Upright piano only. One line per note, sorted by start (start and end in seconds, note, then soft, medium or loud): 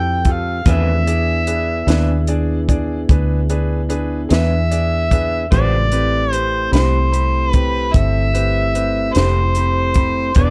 0.00 0.16 E4 soft
0.00 0.16 G4 soft
0.00 0.16 A4 medium
0.25 0.56 F4 medium
0.25 0.56 G4 soft
0.25 0.56 A4 medium
0.67 0.97 D4 medium
0.67 0.97 G#4 medium
0.67 0.97 B4 medium
1.07 1.37 D4 soft
1.07 1.37 G#4 soft
1.07 1.37 D5 medium
1.47 1.77 D4 soft
1.47 1.77 G#4 soft
1.47 1.77 B4 medium
1.88 2.18 D4 medium
1.88 2.18 G#4 medium
1.88 2.18 B4 medium
2.28 2.58 D4 medium
2.28 2.58 G#4 medium
2.28 2.58 D5 medium
2.69 2.99 D4 medium
2.69 2.99 G#4 medium
2.69 2.99 D5 medium
3.10 3.39 D4 medium
3.10 3.39 G#4 medium
3.10 3.39 B4 medium
3.50 3.79 D4 medium
3.50 3.80 G#4 medium
3.50 3.80 B4 medium
3.89 4.19 D4 medium
3.89 4.20 G#4 medium
3.89 4.20 B4 medium
4.30 4.60 D4 medium
4.30 4.60 G#4 soft
4.30 4.60 B4 medium
4.71 5.01 D4 medium
4.71 5.01 G#4 soft
4.71 5.01 D5 medium
5.11 5.41 D4 medium
5.11 5.41 G#4 soft
5.11 5.42 B4 medium
5.51 5.81 C4 medium
5.51 5.81 G4 medium
5.51 5.82 B4 medium
5.92 6.22 C4 medium
5.92 6.22 G4 soft
5.92 6.22 B4 medium
6.32 6.62 C4 medium
6.32 6.62 G4 soft
6.32 6.62 B4 medium
6.71 7.02 C4 medium
6.71 7.02 G4 soft
6.71 7.02 B5 medium
7.12 7.43 C4 medium
7.12 7.43 G4 soft
7.12 7.43 B5 medium
7.53 7.84 C4 medium
7.53 7.84 G4 soft
7.53 7.84 B5 medium
7.93 8.24 C4 medium
7.93 8.24 G4 soft
7.93 8.24 A4 medium
8.34 8.64 C4 medium
8.34 8.64 G4 soft
8.34 8.64 B4 medium
8.75 9.05 C4 soft
8.75 9.05 G4 soft
8.75 9.05 B4 medium
9.16 9.46 C4 medium
9.16 9.46 G4 soft
9.16 9.46 B5 medium
9.56 9.86 C4 medium
9.56 9.86 G4 soft
9.56 9.87 B5 medium
9.96 10.26 C4 medium
9.96 10.26 G4 soft
9.96 10.27 B5 medium
10.36 10.50 D4 medium
10.36 10.50 G#4 medium
10.36 10.50 B4 medium